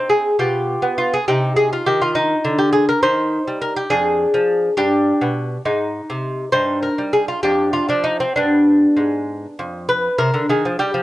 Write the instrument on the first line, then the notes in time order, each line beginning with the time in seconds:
lute
Already playing: C4 D#4
0.10 G#4
0.39 B2 F4 G4
0.82 B3
0.98 F4
1.14 G#4
1.28 C3 D#4 G4
1.56 G#4
1.73 F4
1.86 D#3 G4
2.02 F4
2.15 D#4
2.45 D3
2.58 G4
2.73 G#4
2.89 A#4
3.03 D#3 D#4 C5
3.48 G3
3.61 A#4
3.76 G4
3.90 F2 D4 G#4
4.34 F3
4.77 G2 D4 G4
5.21 B2
5.65 G#2 D#4
6.10 C3
6.52 G2 D#4 C5
6.83 A#4
6.98 G3
7.13 G#4
7.28 F4
7.43 F2 D4 G4
7.73 F4
7.89 F3 D4
8.04 D#4
8.20 C4
8.36 G2 B3 D4
8.97 G#2
9.59 F2
9.89 B4
10.18 C3 A#4
10.34 D3
10.49 D#3 G#4
10.65 F3
10.79 G3 G4
10.94 F3